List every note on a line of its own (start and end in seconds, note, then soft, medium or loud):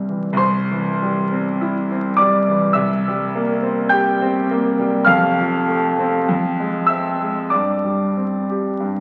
0.00 0.31 C2 soft
0.00 0.09 E3 soft
0.00 0.44 G3 soft
0.00 0.44 C4 soft
0.09 0.41 E3 soft
0.33 2.70 C2 medium
0.37 2.15 C5 medium
0.37 2.19 C6 loud
0.71 1.21 E3 medium
1.03 1.51 G3 medium
1.32 1.80 C4 medium
1.61 2.08 E4 medium
1.91 2.38 C4 medium
2.17 2.66 G3 medium
2.17 2.72 D5 medium
2.17 2.76 D6 loud
2.49 2.78 E3 medium
2.73 5.02 C2 medium
2.73 3.86 E5 medium
2.73 3.89 E6 medium
3.08 3.53 G3 medium
3.35 3.81 A#3 medium
3.63 4.09 C4 medium
3.89 4.37 G4 medium
3.89 5.02 G5 medium
3.89 5.06 G6 loud
4.21 4.67 C4 medium
4.51 4.96 A#3 medium
4.79 5.08 G3 medium
5.05 6.24 F1 medium
5.05 6.24 F2 loud
5.05 6.84 F5 loud
5.05 6.87 F6 loud
5.38 5.86 F3 medium
5.69 6.16 A3 medium
5.99 6.29 C4 medium
6.29 7.48 F2 medium
6.60 7.08 G#3 medium
6.86 7.39 C4 medium
6.86 7.47 E5 medium
6.86 7.50 E6 loud
7.21 7.52 G#3 medium
7.50 8.78 G2 medium
7.50 9.00 D5 medium
7.50 9.00 D6 medium
7.84 8.36 G3 soft
8.17 8.68 C4 soft
8.50 8.81 G4 soft
8.80 9.00 G2 medium